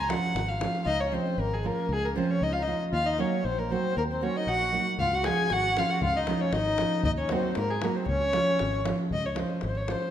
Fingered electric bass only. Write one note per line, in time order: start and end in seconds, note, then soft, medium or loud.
0.00 0.14 C#2 medium
0.35 0.66 G#1 medium
0.86 1.17 C#2 loud
1.38 1.69 G#1 loud
1.89 2.20 C#2 loud
2.42 2.72 C#2 medium
2.93 3.23 D#2 loud
3.45 3.75 A#1 loud
3.97 4.27 D#2 loud
4.47 4.78 A#1 loud
4.99 5.30 C#2 loud
5.51 5.81 G#1 loud
6.02 6.33 C#2 medium
6.52 6.84 G#1 medium
7.05 7.36 D#2 medium
7.57 7.88 G#2 medium
8.09 8.39 C#2 loud
8.61 8.92 G#1 medium
9.12 9.43 C#2 medium
9.63 9.94 G#1 medium